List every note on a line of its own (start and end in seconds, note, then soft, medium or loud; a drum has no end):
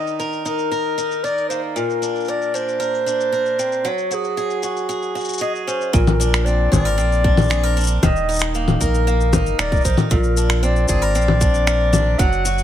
0.00 1.76 D#3 medium
0.00 0.44 D#4 medium
0.00 0.19 A#4 medium
0.00 0.20 D#5 medium
0.07 shaker soft
0.20 0.71 A#4 medium
0.20 shaker soft
0.33 shaker soft
0.45 0.96 D#4 medium
0.45 1.25 A#4 loud
0.45 shaker medium
0.59 shaker soft
0.71 1.23 A#4 medium
0.71 shaker soft
0.98 1.81 D#4 medium
0.98 shaker medium
1.12 shaker soft
1.24 2.28 A#4 medium
1.24 1.48 D5 loud
1.24 shaker soft
1.38 shaker soft
1.49 3.59 A#3 soft
1.49 1.61 C5 medium
1.49 shaker medium
1.76 3.85 A#2 medium
1.76 2.30 A#4 loud
1.76 shaker soft
1.90 shaker soft
2.02 2.53 D4 medium
2.02 shaker medium
2.16 shaker soft
2.20 shaker soft
2.25 2.78 A#4 medium
2.25 shaker soft
2.28 2.56 D5 medium
2.28 shaker soft
2.42 shaker soft
2.54 3.05 D4 medium
2.54 3.88 C5 loud
2.54 shaker medium
2.69 shaker soft
2.80 3.31 A#4 medium
2.80 shaker soft
2.94 shaker soft
3.06 3.90 D4 medium
3.06 shaker medium
3.21 shaker soft
3.32 3.90 A#4 medium
3.32 shaker soft
3.46 shaker soft
3.59 3.90 C4 medium
3.59 shaker medium
3.72 shaker soft
3.85 5.93 F#3 medium
3.85 4.15 C#5 medium
3.85 shaker soft
3.98 shaker soft
4.11 4.62 F#4 medium
4.11 4.65 G#4 medium
4.11 shaker medium
4.24 shaker soft
4.37 4.88 G#4 medium
4.37 shaker soft
4.50 shaker soft
4.63 5.14 F#4 medium
4.63 shaker medium
4.77 shaker soft
4.89 5.40 G#4 medium
4.89 shaker soft
5.03 shaker soft
5.15 5.99 F#4 medium
5.15 shaker soft
5.20 shaker soft
5.25 shaker soft
5.29 shaker soft
5.33 shaker medium
5.38 5.99 G#4 medium
5.38 5.53 D#5 loud
5.38 shaker medium
5.56 shaker soft
5.67 5.99 C#4 medium
5.67 5.94 C5 loud
5.67 shaker medium
5.81 shaker soft
5.93 6.68 A#1 loud
5.93 8.02 A#2 medium
5.93 6.47 A#4 loud
5.93 kick loud
5.93 shaker soft
6.07 low conga medium
6.07 shaker soft
6.20 7.23 D4 medium
6.20 shaker medium
6.34 finger snap medium
6.34 shaker soft
6.45 6.96 C4 medium
6.45 6.72 D5 loud
6.45 shaker soft
6.72 6.99 G#1 loud
6.72 6.85 G#4 medium
6.72 7.98 D5 loud
6.72 kick medium
6.72 low conga medium
6.72 shaker medium
6.85 7.50 A#4 medium
6.85 shaker soft
6.98 7.99 A#1 medium
6.98 8.07 C4 medium
6.98 shaker soft
7.12 shaker soft
7.24 7.76 D4 medium
7.24 kick loud
7.37 low conga medium
7.37 shaker soft
7.41 shaker soft
7.44 shaker soft
7.48 7.63 G#4 medium
7.48 finger snap medium
7.48 shaker soft
7.51 shaker soft
7.54 shaker soft
7.57 shaker soft
7.61 8.08 A#4 medium
7.61 shaker soft
7.64 shaker soft
7.77 8.08 D4 medium
7.77 shaker soft
7.81 shaker soft
7.84 shaker medium
7.87 shaker medium
7.90 shaker soft
8.03 8.77 D#1 loud
8.03 10.11 D#3 medium
8.03 8.52 D#5 loud
8.03 kick loud
8.03 low conga medium
8.03 shaker soft
8.16 shaker soft
8.29 9.32 D#4 medium
8.29 shaker soft
8.32 shaker soft
8.34 shaker soft
8.36 shaker medium
8.39 finger snap medium
8.39 shaker medium
8.55 9.07 A#3 medium
8.55 shaker soft
8.68 low conga medium
8.68 shaker soft
8.81 9.34 A#1 loud
8.81 9.58 A#4 medium
8.81 9.61 A#4 loud
8.81 kick medium
8.81 shaker medium
8.95 shaker soft
9.07 10.62 A#3 medium
9.07 shaker soft
9.21 shaker soft
9.33 9.54 G1 medium
9.33 9.84 D#4 medium
9.33 kick loud
9.33 low conga medium
9.33 shaker medium
9.46 shaker soft
9.58 9.80 D#1 medium
9.58 10.66 A#4 medium
9.58 9.84 D5 loud
9.58 finger snap medium
9.58 shaker soft
9.72 kick loud
9.72 shaker soft
9.76 shaker soft
9.81 9.96 C5 medium
9.81 shaker soft
9.85 9.96 A#1 medium
9.85 10.16 D#4 medium
9.85 kick medium
9.85 shaker medium
9.89 shaker soft
9.93 shaker soft
9.97 low conga medium
9.97 shaker soft
10.11 10.85 A#1 loud
10.11 12.20 A#2 medium
10.11 10.66 A#4 medium
10.11 kick loud
10.11 shaker soft
10.24 shaker soft
10.37 11.40 D4 medium
10.37 shaker medium
10.50 finger snap medium
10.50 shaker soft
10.63 11.14 C4 medium
10.63 10.88 D5 loud
10.63 shaker soft
10.76 shaker soft
10.88 11.16 G#1 loud
10.88 11.02 G#4 medium
10.88 12.20 D5 loud
10.88 kick medium
10.88 shaker medium
11.02 11.66 A#4 medium
11.02 shaker soft
11.14 12.16 A#1 medium
11.14 12.25 C4 medium
11.14 shaker soft
11.22 shaker soft
11.28 low conga medium
11.41 11.91 D4 medium
11.41 kick loud
11.41 shaker medium
11.54 shaker soft
11.67 12.25 A#4 medium
11.67 finger snap medium
11.67 shaker soft
11.93 12.24 D4 medium
11.93 low conga medium
11.93 shaker medium
12.18 12.63 F#1 loud
12.18 12.63 F#3 medium
12.18 12.63 F#5 loud
12.18 kick loud
12.18 shaker soft
12.33 shaker soft
12.45 12.63 F#4 medium
12.45 shaker medium
12.58 shaker soft